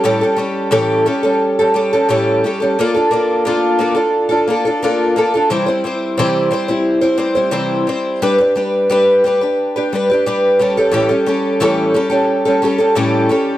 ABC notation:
X:1
M:4/4
L:1/16
Q:1/4=88
K:Ador
V:1 name="Twelve-string acoustic guitar"
[A,,E,G,^CGA] [G,CGA] [G,CGA]2 [A,,E,G,CGA]2 [G,CGA] [G,CGA]2 [G,CGA] [G,CGA] [G,CGA] [A,,E,G,CGA]2 [G,CGA] [G,CGA] | [_B,D=FA] [DFA] [B,DFA]2 [B,DFA]2 [B,DFA] [DFA]2 [DFA] [B,DFA] [DFA] [B,DFA]2 [B,DFA] [DFA] | [C,E,G,CEc] [G,CEc] [G,CEc]2 [C,E,G,CEc]2 [G,CEc] [G,CEc]2 [G,CEc] [G,CEc] [G,CEc] [C,E,G,CEc]2 [G,CEc]2 | [G,DGB] [DGB] [G,DGB]2 [G,DGB]2 [G,DGB] [DGB]2 [DGB] [G,DGB] [DGB] [G,DGB]2 [G,^CGA] [G,CGA] |
[A,,E,G,^CGA] [G,CGA] [G,CGA]2 [A,,E,G,CGA]2 [G,CGA] [G,CGA]2 [G,CGA] [G,CGA] [G,CGA] [A,,E,G,CGA]2 [G,CGA]2 |]